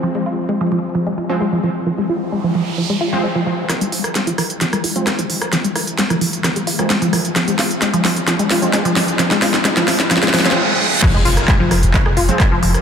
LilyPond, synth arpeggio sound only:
\new Staff \with { instrumentName = "Synth arpeggio sound" } { \clef bass \time 4/4 \key f \minor \tempo 4 = 131 f16 aes16 f'16 r16 aes16 f16 f16 r16 f16 aes16 f'16 r16 aes16 f16 f16 r16 | f16 aes16 f'16 r16 aes16 f16 f16 r16 f16 aes16 f'16 r16 aes16 f16 f16 r16 | f16 aes16 f'16 r16 aes16 f16 f16 r16 f16 aes16 f'16 r16 aes16 f16 f16 r16 | f16 aes16 f'16 r16 aes16 f16 f16 r16 f16 aes16 f'16 r16 aes16 f16 f16 r16 |
f16 aes16 f'16 r16 aes16 f16 f16 r16 f16 aes16 f'16 r16 aes16 f16 f16 r16 | f16 aes16 f'16 r16 aes16 f16 f16 r16 f16 aes16 f16 r4 r16 | f16 aes16 f'16 r16 aes16 f16 f16 r16 f16 aes16 f'16 r16 aes16 f16 f16 r16 | }